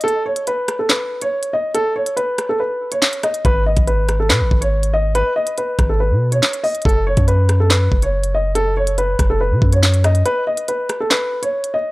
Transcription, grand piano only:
X:1
M:4/4
L:1/16
Q:1/4=141
K:F#dor
V:1 name="Grand piano"
A2 c2 B3 A B3 c3 d2 | A2 c2 B3 A B3 c3 d2 | B2 d2 B3 A B3 c3 d2 | B2 d2 B3 A B3 c3 d2 |
A2 c2 B3 A B3 c3 d2 | A2 c2 B3 A B3 c3 d2 | B2 d2 B3 A B3 c3 d2 |]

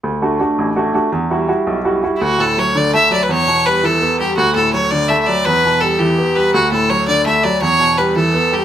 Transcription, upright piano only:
X:1
M:6/8
L:1/8
Q:3/8=111
K:D
V:1 name="Upright piano" clef=bass
D,, [A,DF] [A,DF] A,,, [A,DF] [A,DF] | E,, [G,EF] [G,EF] B,,, [G,EF] [G,EF] | D,, A,, F, D, A, F, | E,, B,, G, E, B, G, |
D,, A,, F, D, A, F, | E,, B,, G, E, B, G, | D,, A,, F, D, A, F, | E,, B,, G, E, B, G, |]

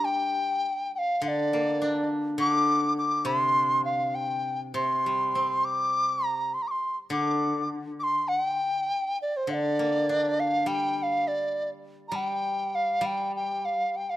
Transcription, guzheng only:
X:1
M:2/4
L:1/8
Q:1/4=102
K:none
V:1 name="Guzheng" clef=bass
[G,DG]2 z2 | D, _B, D2 | D,3 C,- | C,4 |
C, G, C2- | C2 z2 | D,4- | D,2 z2 |
D, _B, D2 | G,4- | G, G,3 | G,4 |]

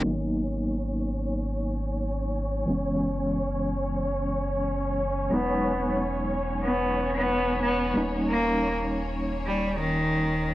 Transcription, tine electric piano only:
X:1
M:4/4
L:1/8
Q:"Swing 16ths" 1/4=91
K:G#m
V:1 name="Tine electric piano"
[F,A,B,D]8 | [E,G,B,C]8 | [F,G,B,D]8 | [=G,A,CD]8 |]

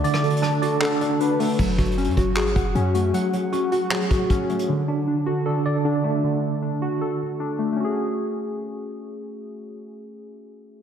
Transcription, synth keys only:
X:1
M:4/4
L:1/8
Q:1/4=155
K:F#m
V:1 name="Synth keys"
[D,A,DA]2 D F A2 D A, | F,2 C F G2 C A, | F,2 C F G2 C A, | D,2 D F A2 D A, |
D,2 D F A2 D A, | [A,CFG]8- | [A,CFG]8 |]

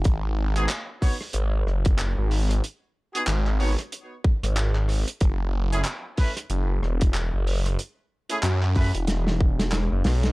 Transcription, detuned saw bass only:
X:1
M:4/4
L:1/16
Q:"Swing 16ths" 1/4=93
K:G#phr
V:1 name="Detuned saw bass" clef=bass
G,,,4 z4 G,,,2 F,,,3 G,,,3 | z4 G,,,3 z4 G,,,4 z | F,,,4 z4 F,,,2 E,,,3 F,,,3 | z4 F,,3 E,,,6 F,,, B,,,2 |]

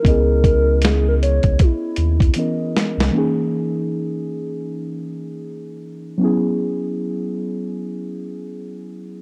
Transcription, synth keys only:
X:1
M:4/4
L:1/8
Q:"Swing 16ths" 1/4=78
K:C#dor
V:1 name="Synth keys"
[B,CEGd]6 [E,B,CAd]2 | [E,A,CDG]8 | [F,B,CEG]8 |]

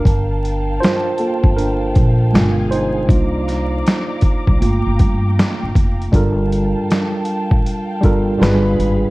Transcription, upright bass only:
X:1
M:4/4
L:1/16
Q:"Swing 16ths" 1/4=79
K:Gm
V:1 name="Upright bass" clef=bass
G,,,4 z3 G,,,3 B,,,2 G,,,4 | C,,4 z3 C,, G,,, G,,, G,,2 z G,,, F,,,2 | G,,,3 z4 A,,, z2 G,,,2 G,,,2 _A,,, z |]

